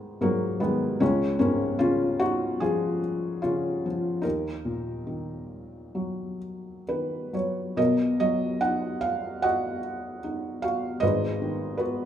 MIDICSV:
0, 0, Header, 1, 2, 480
1, 0, Start_track
1, 0, Tempo, 792602
1, 612, Time_signature, 4, 2, 24, 8
1, 1095, Tempo, 815217
1, 3015, Tempo, 875912
1, 3495, Tempo, 914634
1, 4455, Tempo, 836820
1, 4935, Tempo, 813008
1, 5895, Tempo, 781250
1, 7011, End_track
2, 0, Start_track
2, 0, Title_t, "Felt piano"
2, 0, Program_c, 0, 0
2, 0, Control_c, 0, 64, 127
2, 0, Note_on_c, 0, 44, 45
2, 0, Note_on_c, 0, 51, 54
2, 0, Note_on_c, 0, 56, 47
2, 0, Note_on_c, 0, 59, 64
2, 109, Note_off_c, 0, 44, 0
2, 127, Note_on_c, 0, 44, 51
2, 131, Note_on_c, 0, 58, 81
2, 136, Note_on_c, 0, 54, 66
2, 354, Note_off_c, 0, 58, 0
2, 357, Note_off_c, 0, 54, 0
2, 360, Note_off_c, 0, 51, 0
2, 364, Note_off_c, 0, 59, 0
2, 364, Note_on_c, 0, 59, 76
2, 369, Note_on_c, 0, 51, 57
2, 372, Note_off_c, 0, 56, 0
2, 372, Note_on_c, 0, 56, 56
2, 591, Note_off_c, 0, 59, 0
2, 595, Note_off_c, 0, 44, 0
2, 595, Note_off_c, 0, 56, 0
2, 603, Note_off_c, 0, 51, 0
2, 608, Note_on_c, 0, 61, 88
2, 610, Note_on_c, 0, 37, 62
2, 616, Note_on_c, 0, 56, 66
2, 620, Control_c, 0, 64, 0
2, 727, Control_c, 0, 64, 127
2, 833, Note_off_c, 0, 61, 0
2, 838, Note_off_c, 0, 56, 0
2, 843, Note_on_c, 0, 61, 80
2, 848, Note_on_c, 0, 58, 61
2, 855, Note_on_c, 0, 44, 48
2, 1072, Note_off_c, 0, 61, 0
2, 1075, Note_off_c, 0, 58, 0
2, 1083, Note_on_c, 0, 65, 85
2, 1091, Note_on_c, 0, 49, 47
2, 1094, Note_on_c, 0, 61, 66
2, 1315, Note_off_c, 0, 61, 0
2, 1323, Note_on_c, 0, 66, 86
2, 1332, Note_on_c, 0, 63, 59
2, 1334, Note_off_c, 0, 65, 0
2, 1557, Note_off_c, 0, 63, 0
2, 1563, Note_on_c, 0, 68, 80
2, 1571, Note_on_c, 0, 65, 64
2, 1572, Note_on_c, 0, 53, 50
2, 1577, Note_off_c, 0, 66, 0
2, 1795, Note_off_c, 0, 44, 0
2, 2030, Note_off_c, 0, 68, 0
2, 2033, Note_off_c, 0, 49, 0
2, 2034, Note_off_c, 0, 65, 0
2, 2044, Note_on_c, 0, 65, 73
2, 2054, Note_on_c, 0, 61, 56
2, 2058, Note_on_c, 0, 49, 44
2, 2293, Note_off_c, 0, 53, 0
2, 2301, Note_on_c, 0, 53, 48
2, 2500, Note_off_c, 0, 65, 0
2, 2505, Note_off_c, 0, 61, 0
2, 2506, Note_off_c, 0, 37, 0
2, 2513, Note_on_c, 0, 63, 68
2, 2516, Note_off_c, 0, 49, 0
2, 2524, Note_on_c, 0, 70, 59
2, 2526, Note_off_c, 0, 53, 0
2, 2530, Note_on_c, 0, 39, 42
2, 2537, Control_c, 0, 64, 0
2, 2652, Control_c, 0, 64, 127
2, 2768, Note_on_c, 0, 46, 38
2, 3014, Note_on_c, 0, 51, 43
2, 3497, Note_on_c, 0, 54, 40
2, 3713, Note_off_c, 0, 46, 0
2, 3960, Note_off_c, 0, 51, 0
2, 3989, Note_on_c, 0, 71, 62
2, 3991, Note_on_c, 0, 51, 32
2, 4196, Note_off_c, 0, 63, 0
2, 4201, Note_off_c, 0, 70, 0
2, 4215, Note_off_c, 0, 54, 0
2, 4223, Note_on_c, 0, 54, 38
2, 4230, Note_on_c, 0, 73, 49
2, 4236, Note_off_c, 0, 71, 0
2, 4433, Note_off_c, 0, 39, 0
2, 4445, Note_off_c, 0, 51, 0
2, 4447, Note_off_c, 0, 54, 0
2, 4450, Note_on_c, 0, 47, 52
2, 4452, Note_on_c, 0, 35, 52
2, 4454, Note_on_c, 0, 70, 69
2, 4454, Note_on_c, 0, 75, 79
2, 4462, Control_c, 0, 64, 0
2, 4464, Note_off_c, 0, 73, 0
2, 4555, Control_c, 0, 64, 127
2, 4679, Note_off_c, 0, 75, 0
2, 4699, Note_on_c, 0, 75, 80
2, 4700, Note_on_c, 0, 54, 45
2, 4919, Note_off_c, 0, 75, 0
2, 4931, Note_on_c, 0, 63, 46
2, 4933, Note_on_c, 0, 78, 87
2, 5160, Note_off_c, 0, 78, 0
2, 5170, Note_on_c, 0, 77, 85
2, 5394, Note_off_c, 0, 70, 0
2, 5415, Note_on_c, 0, 78, 85
2, 5420, Note_on_c, 0, 66, 52
2, 5422, Note_off_c, 0, 77, 0
2, 5422, Note_on_c, 0, 75, 63
2, 5635, Note_off_c, 0, 54, 0
2, 5868, Note_off_c, 0, 63, 0
2, 5897, Note_on_c, 0, 63, 42
2, 6111, Note_off_c, 0, 78, 0
2, 6132, Note_on_c, 0, 77, 80
2, 6133, Note_off_c, 0, 66, 0
2, 6142, Note_on_c, 0, 66, 51
2, 6350, Note_off_c, 0, 47, 0
2, 6352, Note_off_c, 0, 35, 0
2, 6355, Note_off_c, 0, 75, 0
2, 6364, Note_on_c, 0, 75, 91
2, 6365, Note_off_c, 0, 63, 0
2, 6373, Note_off_c, 0, 66, 0
2, 6378, Note_on_c, 0, 71, 64
2, 6379, Note_on_c, 0, 32, 61
2, 6381, Note_on_c, 0, 44, 59
2, 6382, Note_off_c, 0, 77, 0
2, 6384, Control_c, 0, 64, 0
2, 6499, Control_c, 0, 64, 127
2, 6620, Note_on_c, 0, 51, 51
2, 6831, Note_off_c, 0, 71, 0
2, 6840, Note_on_c, 0, 71, 67
2, 6850, Note_on_c, 0, 66, 46
2, 6857, Note_on_c, 0, 59, 59
2, 6863, Note_off_c, 0, 75, 0
2, 7011, Note_off_c, 0, 32, 0
2, 7011, Note_off_c, 0, 44, 0
2, 7011, Note_off_c, 0, 51, 0
2, 7011, Note_off_c, 0, 59, 0
2, 7011, Note_off_c, 0, 66, 0
2, 7011, Note_off_c, 0, 71, 0
2, 7011, End_track
0, 0, End_of_file